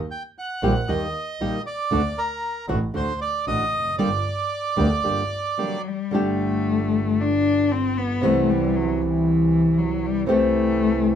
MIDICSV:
0, 0, Header, 1, 5, 480
1, 0, Start_track
1, 0, Key_signature, -2, "minor"
1, 0, Tempo, 516351
1, 1787, Time_signature, 4, 2, 24, 8
1, 3712, Tempo, 530035
1, 5650, Key_signature, 1, "major"
1, 7072, Tempo, 514580
1, 10289, End_track
2, 0, Start_track
2, 0, Title_t, "Bandoneon"
2, 0, Program_c, 0, 23
2, 103, Note_on_c, 0, 79, 70
2, 213, Note_off_c, 0, 79, 0
2, 358, Note_on_c, 0, 78, 77
2, 820, Note_on_c, 0, 75, 79
2, 847, Note_off_c, 0, 78, 0
2, 1507, Note_off_c, 0, 75, 0
2, 1546, Note_on_c, 0, 74, 83
2, 2028, Note_on_c, 0, 70, 65
2, 2038, Note_off_c, 0, 74, 0
2, 2473, Note_off_c, 0, 70, 0
2, 2751, Note_on_c, 0, 72, 79
2, 2974, Note_off_c, 0, 72, 0
2, 2987, Note_on_c, 0, 74, 79
2, 3212, Note_off_c, 0, 74, 0
2, 3228, Note_on_c, 0, 75, 96
2, 3680, Note_off_c, 0, 75, 0
2, 3700, Note_on_c, 0, 74, 82
2, 5364, Note_off_c, 0, 74, 0
2, 10289, End_track
3, 0, Start_track
3, 0, Title_t, "Nylon-string guitar"
3, 0, Program_c, 1, 24
3, 578, Note_on_c, 1, 51, 70
3, 584, Note_on_c, 1, 55, 74
3, 588, Note_on_c, 1, 58, 75
3, 592, Note_on_c, 1, 63, 81
3, 592, Note_on_c, 1, 67, 88
3, 666, Note_off_c, 1, 51, 0
3, 669, Note_off_c, 1, 55, 0
3, 671, Note_off_c, 1, 58, 0
3, 673, Note_off_c, 1, 63, 0
3, 673, Note_off_c, 1, 67, 0
3, 818, Note_on_c, 1, 55, 52
3, 820, Note_on_c, 1, 51, 52
3, 828, Note_on_c, 1, 58, 55
3, 828, Note_on_c, 1, 63, 55
3, 828, Note_on_c, 1, 67, 56
3, 977, Note_off_c, 1, 55, 0
3, 978, Note_off_c, 1, 51, 0
3, 982, Note_off_c, 1, 58, 0
3, 982, Note_off_c, 1, 63, 0
3, 982, Note_off_c, 1, 67, 0
3, 1307, Note_on_c, 1, 51, 51
3, 1310, Note_on_c, 1, 55, 54
3, 1312, Note_on_c, 1, 58, 58
3, 1315, Note_on_c, 1, 63, 61
3, 1315, Note_on_c, 1, 67, 70
3, 1463, Note_off_c, 1, 51, 0
3, 1465, Note_off_c, 1, 55, 0
3, 1466, Note_off_c, 1, 58, 0
3, 1467, Note_off_c, 1, 63, 0
3, 1468, Note_off_c, 1, 67, 0
3, 1773, Note_on_c, 1, 50, 79
3, 1782, Note_on_c, 1, 57, 78
3, 1783, Note_on_c, 1, 62, 78
3, 1790, Note_on_c, 1, 66, 83
3, 1861, Note_off_c, 1, 50, 0
3, 1866, Note_off_c, 1, 57, 0
3, 1866, Note_off_c, 1, 62, 0
3, 1870, Note_off_c, 1, 66, 0
3, 2495, Note_on_c, 1, 50, 72
3, 2500, Note_on_c, 1, 62, 85
3, 2502, Note_on_c, 1, 57, 86
3, 2504, Note_on_c, 1, 66, 80
3, 2583, Note_off_c, 1, 50, 0
3, 2585, Note_off_c, 1, 62, 0
3, 2586, Note_off_c, 1, 57, 0
3, 2587, Note_off_c, 1, 66, 0
3, 2731, Note_on_c, 1, 50, 53
3, 2731, Note_on_c, 1, 57, 55
3, 2733, Note_on_c, 1, 62, 58
3, 2741, Note_on_c, 1, 66, 57
3, 2895, Note_off_c, 1, 50, 0
3, 2895, Note_off_c, 1, 57, 0
3, 2896, Note_off_c, 1, 62, 0
3, 2900, Note_off_c, 1, 66, 0
3, 3224, Note_on_c, 1, 50, 54
3, 3227, Note_on_c, 1, 57, 54
3, 3230, Note_on_c, 1, 62, 60
3, 3234, Note_on_c, 1, 66, 63
3, 3382, Note_off_c, 1, 50, 0
3, 3384, Note_off_c, 1, 57, 0
3, 3385, Note_off_c, 1, 62, 0
3, 3387, Note_off_c, 1, 66, 0
3, 3706, Note_on_c, 1, 50, 68
3, 3708, Note_on_c, 1, 55, 79
3, 3710, Note_on_c, 1, 62, 76
3, 3713, Note_on_c, 1, 58, 77
3, 3714, Note_on_c, 1, 67, 74
3, 3791, Note_off_c, 1, 50, 0
3, 3792, Note_off_c, 1, 55, 0
3, 3794, Note_off_c, 1, 62, 0
3, 3795, Note_off_c, 1, 58, 0
3, 3795, Note_off_c, 1, 67, 0
3, 4410, Note_on_c, 1, 50, 66
3, 4412, Note_on_c, 1, 55, 63
3, 4413, Note_on_c, 1, 58, 75
3, 4418, Note_on_c, 1, 62, 78
3, 4422, Note_on_c, 1, 67, 71
3, 4502, Note_off_c, 1, 50, 0
3, 4503, Note_off_c, 1, 55, 0
3, 4504, Note_off_c, 1, 58, 0
3, 4506, Note_off_c, 1, 62, 0
3, 4508, Note_off_c, 1, 67, 0
3, 4654, Note_on_c, 1, 50, 50
3, 4659, Note_on_c, 1, 58, 50
3, 4661, Note_on_c, 1, 55, 52
3, 4665, Note_on_c, 1, 67, 51
3, 4666, Note_on_c, 1, 62, 57
3, 4820, Note_off_c, 1, 50, 0
3, 4822, Note_off_c, 1, 58, 0
3, 4823, Note_off_c, 1, 55, 0
3, 4825, Note_off_c, 1, 67, 0
3, 4826, Note_off_c, 1, 62, 0
3, 5146, Note_on_c, 1, 50, 52
3, 5151, Note_on_c, 1, 55, 51
3, 5151, Note_on_c, 1, 58, 57
3, 5155, Note_on_c, 1, 67, 57
3, 5159, Note_on_c, 1, 62, 53
3, 5313, Note_off_c, 1, 50, 0
3, 5316, Note_off_c, 1, 55, 0
3, 5316, Note_off_c, 1, 58, 0
3, 5318, Note_off_c, 1, 67, 0
3, 5320, Note_off_c, 1, 62, 0
3, 5630, Note_on_c, 1, 50, 70
3, 5642, Note_on_c, 1, 55, 72
3, 5654, Note_on_c, 1, 62, 76
3, 5661, Note_on_c, 1, 67, 85
3, 7537, Note_off_c, 1, 50, 0
3, 7548, Note_on_c, 1, 48, 76
3, 7550, Note_off_c, 1, 62, 0
3, 7562, Note_on_c, 1, 52, 82
3, 7566, Note_off_c, 1, 55, 0
3, 7569, Note_on_c, 1, 55, 83
3, 7578, Note_off_c, 1, 67, 0
3, 7579, Note_on_c, 1, 59, 83
3, 7581, Note_on_c, 1, 64, 84
3, 9450, Note_off_c, 1, 48, 0
3, 9461, Note_on_c, 1, 48, 81
3, 9465, Note_off_c, 1, 52, 0
3, 9469, Note_on_c, 1, 52, 83
3, 9474, Note_off_c, 1, 55, 0
3, 9479, Note_off_c, 1, 59, 0
3, 9481, Note_on_c, 1, 57, 82
3, 9482, Note_off_c, 1, 64, 0
3, 9482, Note_on_c, 1, 64, 82
3, 9488, Note_on_c, 1, 67, 92
3, 10289, Note_off_c, 1, 48, 0
3, 10289, Note_off_c, 1, 52, 0
3, 10289, Note_off_c, 1, 57, 0
3, 10289, Note_off_c, 1, 64, 0
3, 10289, Note_off_c, 1, 67, 0
3, 10289, End_track
4, 0, Start_track
4, 0, Title_t, "Cello"
4, 0, Program_c, 2, 42
4, 5168, Note_on_c, 2, 54, 78
4, 5420, Note_on_c, 2, 55, 82
4, 5433, Note_off_c, 2, 54, 0
4, 5657, Note_on_c, 2, 57, 88
4, 5671, Note_off_c, 2, 55, 0
4, 6621, Note_on_c, 2, 62, 98
4, 6634, Note_off_c, 2, 57, 0
4, 7087, Note_on_c, 2, 60, 96
4, 7101, Note_off_c, 2, 62, 0
4, 7326, Note_on_c, 2, 59, 97
4, 7340, Note_off_c, 2, 60, 0
4, 7573, Note_on_c, 2, 57, 87
4, 7587, Note_off_c, 2, 59, 0
4, 7814, Note_on_c, 2, 55, 89
4, 7828, Note_off_c, 2, 57, 0
4, 8056, Note_on_c, 2, 54, 88
4, 8070, Note_off_c, 2, 55, 0
4, 8300, Note_on_c, 2, 52, 88
4, 8314, Note_off_c, 2, 54, 0
4, 9009, Note_on_c, 2, 54, 85
4, 9023, Note_off_c, 2, 52, 0
4, 9269, Note_on_c, 2, 55, 96
4, 9283, Note_off_c, 2, 54, 0
4, 9478, Note_off_c, 2, 55, 0
4, 9484, Note_on_c, 2, 57, 97
4, 10289, Note_off_c, 2, 57, 0
4, 10289, End_track
5, 0, Start_track
5, 0, Title_t, "Double bass"
5, 0, Program_c, 3, 43
5, 586, Note_on_c, 3, 34, 86
5, 789, Note_off_c, 3, 34, 0
5, 825, Note_on_c, 3, 39, 57
5, 1027, Note_off_c, 3, 39, 0
5, 1302, Note_on_c, 3, 34, 51
5, 1508, Note_off_c, 3, 34, 0
5, 1780, Note_on_c, 3, 38, 78
5, 1983, Note_off_c, 3, 38, 0
5, 2496, Note_on_c, 3, 33, 88
5, 2703, Note_off_c, 3, 33, 0
5, 2750, Note_on_c, 3, 38, 54
5, 2951, Note_off_c, 3, 38, 0
5, 3228, Note_on_c, 3, 33, 54
5, 3431, Note_off_c, 3, 33, 0
5, 3473, Note_on_c, 3, 29, 49
5, 3711, Note_off_c, 3, 29, 0
5, 3717, Note_on_c, 3, 31, 73
5, 3916, Note_off_c, 3, 31, 0
5, 4427, Note_on_c, 3, 38, 86
5, 4631, Note_off_c, 3, 38, 0
5, 4665, Note_on_c, 3, 31, 46
5, 4873, Note_off_c, 3, 31, 0
5, 5642, Note_on_c, 3, 31, 68
5, 7457, Note_off_c, 3, 31, 0
5, 7561, Note_on_c, 3, 36, 66
5, 9384, Note_off_c, 3, 36, 0
5, 9477, Note_on_c, 3, 36, 73
5, 10289, Note_off_c, 3, 36, 0
5, 10289, End_track
0, 0, End_of_file